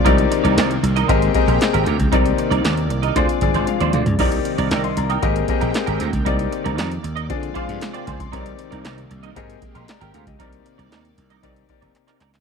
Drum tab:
CC |----------------|----------------|x---------------|----------------|
HH |xxxxxxxxxxxxxxxx|xxxxxxxxxxxxxxxx|-xxxxxxxxxxxxxxx|xxxxxxxxxxxxxxxx|
CP |----x-------x---|----x-----------|----x-------x---|----x-------x---|
SD |----o-------o---|----o-----------|----o-------o---|----o-------o---|
T1 |----------------|------------o---|----------------|----------------|
T2 |----------------|--------------o-|----------------|----------------|
FT |----------------|---------------o|----------------|----------------|
BD |o-------o-o----o|o-------o-o-----|o-------o-o----o|o-------o-o---oo|

CC |----------------|----------------|
HH |xxxxxxxxxxxxxxxx|xxxxxxxxxxxxxxxx|
CP |----x-------x---|----x-------xxxx|
SD |----o-------o---|----o-----------|
T1 |----------------|----------------|
T2 |----------------|----------------|
FT |----------------|----------------|
BD |o-------o-o----o|o-------o-o-----|